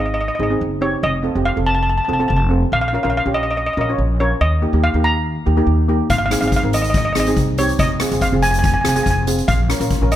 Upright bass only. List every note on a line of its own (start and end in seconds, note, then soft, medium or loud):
0.00 0.28 G#1 medium
0.39 0.56 G#1 medium
0.61 0.94 F#1 medium
1.03 1.28 F1 loud
1.35 1.52 F1 medium
1.57 1.98 F1 medium
2.09 2.25 F1 medium
2.30 2.63 F1 medium
2.72 2.97 A#1 medium
3.04 3.21 A#1 medium
3.26 3.67 A#1 medium
3.77 3.94 A#1 medium
3.98 4.32 A#1 medium
4.41 4.66 D#2 medium
4.73 4.90 D#2 medium
4.94 5.35 D#2 medium
5.47 5.63 D#2 medium
5.67 6.00 D#2 medium
6.10 6.35 G#1 medium
6.42 6.59 G#1 medium
6.63 7.05 G#1 medium
7.16 7.32 G#1 medium
7.37 7.70 C2 medium
7.79 8.04 F1 medium
8.11 8.28 F1 medium
8.32 8.74 F1 medium
8.85 9.02 F1 medium
9.06 9.39 F1 medium
9.48 9.74 A#1 medium
9.80 9.97 A#1 medium
10.01 10.16 A#1 medium